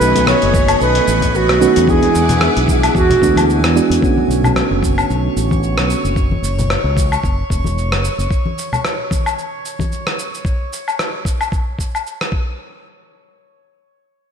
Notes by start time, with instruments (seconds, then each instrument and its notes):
Already playing: synth keys D#3 A3 B3 C#4 F#4, string machine A3 D#5 B5 C#6, flugelhorn B4, synth texture G#5 G#6
0.01 fretless electric bass B1, cabasa
0.15 closed hi-hat, low conga, cabasa
0.27 flugelhorn C#5, cross-stick, cabasa
0.42 fretless electric bass F#1, closed hi-hat
0.53 kick, high conga, cabasa
0.68 closed hi-hat, cabasa, low woodblock
0.81 fretless electric bass B1, flugelhorn B4, cabasa
0.95 closed hi-hat
1.08 fretless electric bass A1, cabasa
1.21 kick, closed hi-hat, high conga, cabasa
1.35 flugelhorn F#4, cabasa
1.49 fretless electric bass B1, cross-stick, closed hi-hat
1.60 synth keys D#3 A3 B3 C#4 F#4, cabasa
1.76 fretless electric bass E2, closed hi-hat, cabasa
1.87 synth keys E3 G#3 B3 D4 E4, string machine G#4 E5 F#5 D6, flugelhorn G#4, kick, cabasa
2.02 closed hi-hat, high conga
2.15 fretless electric bass E2, cabasa
2.29 closed hi-hat, low conga, cabasa
2.41 cross-stick, cabasa
2.57 fretless electric bass B1, closed hi-hat
2.68 kick, high conga, cabasa
2.83 closed hi-hat, cabasa, low woodblock
2.95 fretless electric bass E2, flugelhorn F#4, kick, cabasa
3.10 closed hi-hat, low conga
3.22 fretless electric bass D2, synth keys E3 G#3 B3 D4 F#4, kick, cabasa
3.36 closed hi-hat, high conga, cabasa, low woodblock
3.50 cabasa
3.63 fretless electric bass E2, cross-stick, closed hi-hat
3.75 synth keys E3 G#3 B3 D4 F#4, cabasa
3.90 fretless electric bass E2, closed hi-hat, cabasa
4.00 synth keys D3 A3 B3 C#4 F#4, synth texture C#5 C#6, kick, cabasa
4.17 high conga
4.28 fretless electric bass B1, cabasa
4.44 low conga, cabasa, low woodblock
4.56 cross-stick, cabasa
4.71 fretless electric bass F#1
4.83 kick, high conga, cabasa
4.98 cabasa, low woodblock
5.10 fretless electric bass B1, cabasa
5.37 fretless electric bass A1, cabasa
5.51 kick, high conga, cabasa
5.63 cabasa
5.77 fretless electric bass B1, cross-stick
5.90 cabasa
6.05 fretless electric bass F#1, cabasa
6.16 kick, cabasa
6.31 high conga
6.42 fretless electric bass F#1, cabasa
6.59 low conga, cabasa
6.70 cross-stick, cabasa
6.84 fretless electric bass C#2
6.97 kick, high conga, cabasa
7.12 cabasa, low woodblock
7.24 fretless electric bass F#1, kick, cabasa
7.50 fretless electric bass E1, kick, cabasa
7.64 high conga, cabasa
7.78 cabasa
7.92 fretless electric bass F#1, cross-stick
8.05 cabasa
8.18 fretless electric bass F#1, cabasa
8.31 kick, cabasa
8.46 high conga
8.58 cabasa
8.73 low conga, cabasa, low woodblock
8.85 cross-stick, cabasa
9.11 kick, high conga, cabasa
9.26 cabasa, low woodblock
9.38 cabasa
9.65 cabasa
9.79 kick, high conga, cabasa
9.92 cabasa
10.07 cross-stick
10.19 cabasa
10.34 cabasa
10.45 kick, cabasa
10.73 cabasa
10.88 cabasa, low woodblock
10.99 cross-stick, cabasa
11.25 kick, cabasa
11.41 cabasa, low woodblock
11.52 kick, cabasa
11.79 kick, cabasa
11.95 cabasa, low woodblock
12.07 cabasa
12.21 cross-stick
12.32 kick